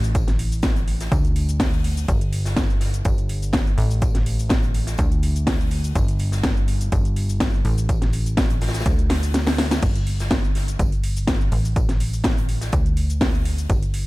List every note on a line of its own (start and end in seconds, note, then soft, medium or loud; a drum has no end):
0.00 1.09 A1 medium
0.00 shaker medium
0.15 kick loud
0.15 closed hi-hat medium
0.15 tambourine medium
0.15 shaker medium
0.28 snare soft
0.28 closed hi-hat medium
0.28 shaker soft
0.39 open hi-hat loud
0.39 tambourine medium
0.52 shaker medium
0.62 kick loud
0.62 snare loud
0.62 closed hi-hat medium
0.62 tambourine medium
0.62 shaker medium
0.76 closed hi-hat soft
0.76 shaker soft
0.88 open hi-hat medium
0.88 tambourine medium
1.00 snare medium
1.00 closed hi-hat soft
1.00 shaker medium
1.12 2.06 D2 medium
1.12 kick loud
1.12 closed hi-hat medium
1.12 tambourine medium
1.12 shaker medium
1.25 closed hi-hat soft
1.25 shaker soft
1.36 open hi-hat loud
1.36 tambourine medium
1.49 closed hi-hat soft
1.49 shaker medium
1.60 kick loud
1.60 snare loud
1.60 closed hi-hat medium
1.60 open hi-hat medium
1.60 shaker medium
1.73 shaker soft
1.84 open hi-hat loud
1.84 tambourine medium
1.97 closed hi-hat soft
1.97 shaker medium
2.08 3.03 G1 medium
2.08 kick loud
2.08 closed hi-hat medium
2.08 tambourine medium
2.08 shaker medium
2.21 closed hi-hat medium
2.21 shaker soft
2.33 open hi-hat loud
2.33 tambourine medium
2.45 snare medium
2.45 shaker medium
2.57 kick loud
2.57 snare loud
2.57 closed hi-hat medium
2.57 tambourine medium
2.57 shaker medium
2.70 shaker soft
2.80 snare medium
2.80 open hi-hat medium
2.80 tambourine medium
2.94 closed hi-hat soft
2.94 shaker medium
3.05 3.76 G1 medium
3.05 kick loud
3.05 closed hi-hat medium
3.05 tambourine medium
3.05 shaker medium
3.18 closed hi-hat soft
3.18 shaker soft
3.29 open hi-hat loud
3.29 tambourine medium
3.42 shaker medium
3.53 kick loud
3.53 snare loud
3.53 closed hi-hat medium
3.53 tambourine medium
3.53 shaker medium
3.67 shaker soft
3.78 4.96 A1 medium
3.78 open hi-hat medium
3.78 tambourine medium
3.91 shaker medium
4.02 kick loud
4.02 closed hi-hat medium
4.02 tambourine medium
4.02 shaker medium
4.15 snare soft
4.15 closed hi-hat medium
4.15 shaker soft
4.26 open hi-hat loud
4.26 tambourine medium
4.39 shaker medium
4.49 kick loud
4.49 snare loud
4.49 closed hi-hat medium
4.49 tambourine medium
4.49 shaker medium
4.63 closed hi-hat soft
4.63 shaker soft
4.74 open hi-hat medium
4.74 tambourine medium
4.87 snare medium
4.87 closed hi-hat medium
4.87 shaker medium
4.98 5.93 D2 medium
4.98 kick loud
4.98 closed hi-hat medium
4.98 tambourine medium
4.98 shaker medium
5.12 closed hi-hat soft
5.12 shaker soft
5.23 open hi-hat loud
5.23 tambourine medium
5.36 closed hi-hat soft
5.36 shaker medium
5.47 kick loud
5.47 snare loud
5.47 closed hi-hat medium
5.47 open hi-hat medium
5.47 shaker medium
5.60 shaker soft
5.71 open hi-hat medium
5.71 tambourine medium
5.84 closed hi-hat soft
5.84 shaker medium
5.95 6.90 G1 medium
5.95 kick loud
5.95 closed hi-hat medium
5.95 tambourine medium
5.95 shaker medium
6.08 closed hi-hat medium
6.08 shaker soft
6.19 open hi-hat loud
6.19 tambourine medium
6.32 snare medium
6.32 shaker medium
6.43 kick loud
6.43 snare loud
6.43 closed hi-hat medium
6.43 tambourine loud
6.43 shaker medium
6.57 shaker soft
6.68 open hi-hat medium
6.68 tambourine medium
6.81 closed hi-hat medium
6.81 shaker medium
6.92 7.63 G1 medium
6.92 kick loud
6.92 closed hi-hat medium
6.92 tambourine medium
6.92 shaker medium
7.05 closed hi-hat soft
7.05 shaker soft
7.16 open hi-hat loud
7.16 tambourine medium
7.29 shaker medium
7.40 kick loud
7.40 snare loud
7.40 closed hi-hat medium
7.40 tambourine medium
7.40 shaker medium
7.54 shaker soft
7.65 8.84 A1 medium
7.65 open hi-hat medium
7.65 tambourine medium
7.78 shaker medium
7.89 kick loud
7.89 closed hi-hat medium
7.89 tambourine medium
7.89 shaker medium
8.02 snare soft
8.02 closed hi-hat medium
8.02 shaker soft
8.13 open hi-hat loud
8.13 tambourine medium
8.26 closed hi-hat soft
8.26 shaker medium
8.37 kick loud
8.37 snare loud
8.37 closed hi-hat medium
8.37 tambourine medium
8.37 shaker medium
8.50 closed hi-hat soft
8.50 shaker soft
8.61 snare medium
8.61 open hi-hat medium
8.61 tambourine medium
8.67 snare medium
8.67 tambourine medium
8.74 snare loud
8.74 closed hi-hat medium
8.74 tambourine medium
8.74 shaker medium
8.80 snare loud
8.80 tambourine medium
8.86 9.80 D2 medium
8.86 kick loud
8.86 closed hi-hat medium
8.86 tambourine medium
8.86 shaker medium
8.99 closed hi-hat soft
8.99 shaker soft
9.10 snare loud
9.10 snare medium
9.10 open hi-hat loud
9.10 open hi-hat medium
9.23 closed hi-hat soft
9.23 shaker medium
9.34 snare medium
9.34 closed hi-hat medium
9.34 tambourine medium
9.34 shaker medium
9.47 snare loud
9.47 snare medium
9.47 closed hi-hat soft
9.47 open hi-hat medium
9.47 shaker soft
9.58 snare medium
9.58 snare loud
9.58 open hi-hat medium
9.58 tambourine medium
9.71 snare loud
9.71 snare medium
9.71 closed hi-hat soft
9.71 tambourine medium
9.71 shaker medium
9.83 10.77 G1 medium
9.83 kick loud
9.83 closed hi-hat medium
9.83 crash medium
9.83 tambourine medium
9.83 shaker medium
9.96 closed hi-hat medium
9.96 shaker soft
10.06 open hi-hat loud
10.06 tambourine medium
10.20 snare medium
10.20 shaker medium
10.30 kick loud
10.30 snare loud
10.30 closed hi-hat medium
10.30 tambourine medium
10.30 shaker medium
10.44 shaker soft
10.55 snare medium
10.55 open hi-hat medium
10.55 tambourine medium
10.68 closed hi-hat medium
10.68 shaker medium
10.79 11.50 G1 medium
10.79 kick loud
10.79 closed hi-hat medium
10.79 tambourine medium
10.79 shaker medium
10.92 closed hi-hat soft
10.92 shaker soft
11.03 open hi-hat loud
11.03 tambourine medium
11.17 shaker medium
11.27 kick loud
11.27 snare loud
11.27 closed hi-hat medium
11.27 tambourine medium
11.27 shaker medium
11.41 shaker soft
11.52 12.71 A1 medium
11.52 open hi-hat loud
11.52 tambourine medium
11.65 shaker medium
11.76 kick loud
11.76 closed hi-hat medium
11.76 tambourine medium
11.76 shaker medium
11.89 snare soft
11.89 closed hi-hat medium
11.89 shaker soft
12.00 open hi-hat loud
12.00 tambourine medium
12.13 shaker medium
12.24 kick loud
12.24 snare loud
12.24 closed hi-hat medium
12.24 tambourine medium
12.24 shaker medium
12.38 closed hi-hat soft
12.38 shaker soft
12.49 open hi-hat medium
12.49 tambourine medium
12.61 snare medium
12.61 closed hi-hat medium
12.61 shaker medium
12.72 13.67 D2 medium
12.72 kick loud
12.72 closed hi-hat medium
12.72 tambourine loud
12.72 shaker medium
12.86 closed hi-hat soft
12.86 shaker soft
12.97 open hi-hat loud
12.97 tambourine medium
13.10 closed hi-hat soft
13.10 shaker medium
13.21 kick loud
13.21 snare loud
13.21 closed hi-hat medium
13.21 open hi-hat medium
13.21 shaker medium
13.34 shaker soft
13.45 open hi-hat loud
13.45 tambourine medium
13.58 closed hi-hat soft
13.58 shaker medium
13.70 14.07 G1 medium
13.70 kick loud
13.70 closed hi-hat medium
13.70 tambourine medium
13.70 shaker medium
13.83 closed hi-hat medium
13.83 shaker soft
13.94 open hi-hat loud
13.94 tambourine medium